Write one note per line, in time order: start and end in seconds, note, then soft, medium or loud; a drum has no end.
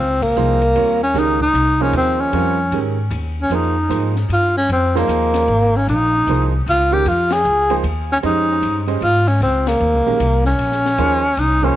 0.00 0.35 C#2 medium
0.00 0.24 C4 medium
0.22 1.01 A#3 medium
0.22 kick medium
0.22 ride medium
0.36 0.74 C2 medium
0.36 0.59 F3 medium
0.36 0.59 A#3 medium
0.36 0.59 D#4 medium
0.36 0.59 G#4 medium
0.36 0.60 C5 medium
0.36 hi-hat pedal soft
0.62 ride soft
0.75 1.14 D#2 medium
0.75 0.98 G3 medium
0.75 0.99 C4 soft
0.75 0.99 F4 soft
0.75 0.99 A#4 soft
0.75 0.99 C#5 medium
0.75 ride medium
1.03 1.20 C#4 medium
1.14 1.53 C#2 medium
1.14 1.38 D#3 medium
1.14 1.38 G#3 medium
1.14 1.38 C#4 medium
1.14 1.38 G4 medium
1.14 1.38 A#4 medium
1.14 snare soft
1.14 ride soft
1.19 1.41 D#4 medium
1.40 1.84 D#4 medium
1.40 kick soft
1.53 1.92 C2 medium
1.53 hi-hat pedal soft
1.53 ride medium
1.80 2.31 F3 medium
1.80 2.31 A#3 medium
1.80 1.95 C#4 medium
1.80 2.31 D#4 medium
1.80 2.31 G#4 soft
1.80 2.31 C5 medium
1.92 2.31 D#2 medium
1.92 ride medium
1.97 2.22 C4 medium
2.21 2.89 C#4 medium
2.32 2.71 F2 medium
2.32 2.56 G3 medium
2.32 2.56 C4 medium
2.32 2.56 F4 medium
2.32 2.56 A#4 medium
2.32 2.56 C#5 medium
2.32 ride soft
2.71 3.10 G#2 medium
2.71 2.96 D#3 soft
2.71 2.96 G#3 soft
2.71 2.96 C#4 soft
2.71 2.96 G4 soft
2.71 2.96 A#4 medium
2.71 ride medium
3.10 3.49 D#2 medium
3.10 hi-hat pedal medium
3.10 ride medium
3.42 3.57 C#4 medium
3.50 3.89 F2 medium
3.50 3.74 F3 medium
3.50 3.74 A#3 soft
3.50 3.74 D#4 medium
3.50 3.74 G#4 medium
3.50 3.75 C5 medium
3.50 ride medium
3.55 4.18 D#4 medium
3.89 4.28 G#2 medium
3.89 4.13 F3 soft
3.89 4.13 A#3 soft
3.89 4.13 D#4 soft
3.89 4.13 G#4 soft
3.89 4.13 C5 medium
3.89 hi-hat pedal medium
3.89 ride medium
4.16 snare soft
4.29 4.67 G2 medium
4.29 ride medium
4.33 4.55 F4 medium
4.57 4.69 C#4 medium
4.68 5.07 F2 medium
4.68 ride medium
4.72 4.99 C4 medium
4.95 5.46 F3 medium
4.95 5.46 A#3 medium
4.95 5.78 A#3 medium
4.95 5.46 D#4 medium
4.95 5.46 G#4 medium
4.95 5.46 C5 medium
4.95 snare soft
5.08 5.46 D#2 medium
5.08 hi-hat pedal medium
5.08 ride medium
5.34 snare soft
5.34 ride medium
5.48 5.86 G#1 medium
5.76 5.89 C#4 medium
5.87 6.26 A#1 medium
5.87 6.49 D#4 medium
5.87 ride soft
6.27 6.65 C2 medium
6.27 6.50 F3 medium
6.27 6.51 A#3 medium
6.27 6.51 D#4 medium
6.27 6.51 G#4 medium
6.27 6.51 C5 medium
6.27 hi-hat pedal medium
6.27 ride medium
6.66 7.04 C#2 medium
6.66 6.94 F4 loud
6.66 ride medium
6.91 7.04 D#3 medium
6.91 7.04 G#3 medium
6.91 7.04 C#4 medium
6.91 7.04 G4 medium
6.91 7.09 G4 medium
6.91 7.05 A#4 medium
7.05 7.43 F2 medium
7.05 7.34 F4 medium
7.05 ride soft
7.31 7.79 G#4 loud
7.31 snare medium
7.31 ride medium
7.44 7.83 C#2 medium
7.44 hi-hat pedal medium
7.70 7.82 F3 medium
7.70 7.83 A#3 medium
7.70 7.83 D#4 medium
7.70 7.83 G#4 medium
7.70 7.83 C5 medium
7.70 ride soft
7.83 8.22 D#2 medium
7.83 ride medium
8.12 8.18 C#4 medium
8.23 8.61 F2 medium
8.23 8.82 G#3 medium
8.23 8.82 C#4 medium
8.23 8.85 D#4 medium
8.23 8.83 G4 medium
8.23 8.83 C5 medium
8.23 8.83 D#5 medium
8.23 ride soft
8.62 9.00 G2 medium
8.62 hi-hat pedal medium
8.62 ride medium
8.87 9.00 G#3 medium
8.87 9.00 C#4 medium
8.87 9.00 G4 medium
8.87 9.00 C5 medium
8.87 9.00 D#5 medium
8.87 ride soft
9.01 9.39 G#2 medium
9.01 9.30 F4 medium
9.01 ride medium
9.28 9.41 C#4 medium
9.28 ride soft
9.40 9.79 C#2 medium
9.40 9.69 C4 medium
9.40 ride soft
9.67 10.45 A#3 medium
9.67 snare medium
9.67 ride medium
9.80 9.93 D#2 medium
9.93 10.06 C#2 medium
10.06 10.18 A#1 medium
10.06 10.19 D#3 medium
10.06 10.18 G#3 medium
10.06 10.18 C#4 medium
10.06 10.19 G4 medium
10.06 10.19 A#4 medium
10.20 10.58 C2 medium
10.20 hi-hat pedal medium
10.20 ride medium
10.45 11.40 C#4 medium
10.45 snare soft
10.58 10.96 A#1 medium
10.58 ride medium
10.72 snare soft
10.86 snare soft
10.98 11.36 D#2 medium
10.98 11.21 F3 medium
10.98 11.21 A#3 medium
10.98 11.21 D#4 medium
10.98 11.21 G#4 medium
10.98 11.21 C5 medium
10.98 hi-hat pedal soft
10.98 ride medium
11.37 11.75 C2 medium
11.37 11.66 D#4 medium
11.37 ride medium
11.62 11.75 F3 medium
11.62 11.75 A#3 medium
11.62 11.76 C#4 medium
11.62 11.75 D#4 medium
11.62 11.75 G#4 medium
11.62 11.76 C5 medium
11.62 kick soft